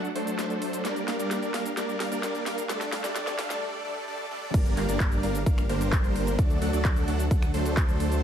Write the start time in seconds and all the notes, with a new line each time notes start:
0.05 cabasa
0.16 F#3 A3 D4 A4 C5, open hi-hat
0.27 closed hi-hat, cabasa
0.39 snare, closed hi-hat, cabasa
0.50 closed hi-hat, cabasa
0.62 open hi-hat
0.73 closed hi-hat, cabasa
0.85 G3 A#3 D4 A#4 D5, snare, closed hi-hat, cabasa
0.96 closed hi-hat, cabasa
1.08 G3 A#3 D4 A#4 F5, snare, open hi-hat
1.19 G3 A#3 D4 A#4 D5, closed hi-hat, cabasa
1.31 snare, closed hi-hat, cabasa
1.43 closed hi-hat, cabasa
1.54 G3 A#3 D4 A#4 F5, snare, open hi-hat
1.66 closed hi-hat, cabasa
1.77 G3 A#3 D4 A#4 D5, snare, closed hi-hat, cabasa
1.89 cabasa
2.00 G3 A#3 D4 A#4 F5, snare, open hi-hat
2.12 G3 A#3 D4 A#4 D5, closed hi-hat, cabasa
2.23 snare, closed hi-hat, cabasa
2.35 closed hi-hat, cabasa
2.46 G3 A#3 D4 A#4 F5, snare, open hi-hat
2.58 closed hi-hat, cabasa
2.69 G3 A3 D4 A4 D5, snare, closed hi-hat, cabasa
2.81 snare, closed hi-hat, cabasa
2.92 G3 A3 D4 A4 F5, snare, open hi-hat
3.04 G3 A3 D4 A4 D5, snare, closed hi-hat, cabasa
3.16 G3 A3 D4 A4 D5, snare, closed hi-hat, cabasa
3.27 snare, closed hi-hat, cabasa
3.39 G3 A3 D4 A4 F5, snare, open hi-hat
3.50 G3 A3 D4 A4 D5, snare, closed hi-hat, cabasa
3.62 G3 A3 D4 A4 D5
3.85 G3 A3 D4 A4 D5
4.08 G3 A3 D4 A4 D5
4.31 G3 A3 D4 A4 D5
4.54 G1 G3 A#3 D4 A#4 D5, kick, closed hi-hat, crash, cabasa
4.66 closed hi-hat, cabasa
4.77 G1 G3 A#3 D4 A#4 F5, clap, open hi-hat
4.89 G1 G3 A#3 D4 A#4 D5, closed hi-hat, cabasa
5.00 kick, clap, closed hi-hat, cabasa
5.12 closed hi-hat, cabasa
5.23 G1 G3 A#3 D4 A#4 F5, open hi-hat
5.35 closed hi-hat, cabasa
5.46 G3 A#3 D4 A#4 F5, kick, closed hi-hat, cabasa
5.58 finger snap, cabasa
5.69 G1 G3 A#3 D4 A#4 C5, open hi-hat
5.81 closed hi-hat, cabasa
5.93 kick, clap, closed hi-hat, cabasa
6.04 closed hi-hat, cabasa
6.16 open hi-hat
6.27 closed hi-hat, cabasa
6.39 D2 F#3 A3 D4 A4 D5, kick, closed hi-hat, cabasa
6.50 closed hi-hat, cabasa
6.62 D2 F#3 A3 D4 A4 F#5, open hi-hat
6.73 D2 F#3 A3 D4 A4 D5, closed hi-hat, cabasa
6.85 kick, clap, closed hi-hat, cabasa
6.96 closed hi-hat, cabasa
7.08 D2 F#3 A3 D4 A4 F#5, open hi-hat
7.19 closed hi-hat, cabasa
7.31 D2 F#3 A3 D4 A4 F#5, kick, closed hi-hat, cabasa
7.42 finger snap, cabasa
7.54 D2 F#3 A3 D4 A4 C5, open hi-hat
7.66 closed hi-hat, cabasa
7.77 kick, clap, closed hi-hat, cabasa
7.89 closed hi-hat, cabasa
8.00 open hi-hat
8.12 closed hi-hat, cabasa